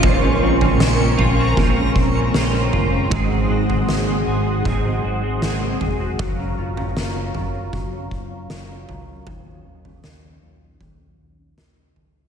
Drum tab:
SD |----o-------o---|----o-------o---|----o-------o---|----o-------o---|
FT |o--o--o-o-----o-|o--o----o-----o-|o--o--o-o-----o-|o--o----o-----o-|
BD |o-------o-o-----|o-------o-------|o-------o-o-----|o-------o-------|